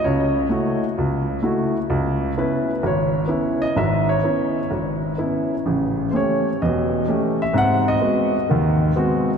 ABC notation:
X:1
M:4/4
L:1/8
Q:"Swing" 1/4=128
K:C#m
V:1 name="Grand piano"
c3 z4 z | z2 B2 c3 d | e c3 z4 | z2 [^Bc]2 d3 e |
f d3 z4 |]
V:2 name="Grand piano"
[C,,C,]2 [A,EF] z C,,2 [A,EF] z | C,,2 [B,CE] z G,,,2 [B,CE] z | [G,,,G,,]2 [B,CE] z G,,,2 [B,CE] z | [A,,,C,]2 [A,C=G] z [E,,,E,,]2 [A,CG] z |
[G,,^B,]2 [G,=B,^B,F] z [D,,D,]2 [G,=B,^B,F] z |]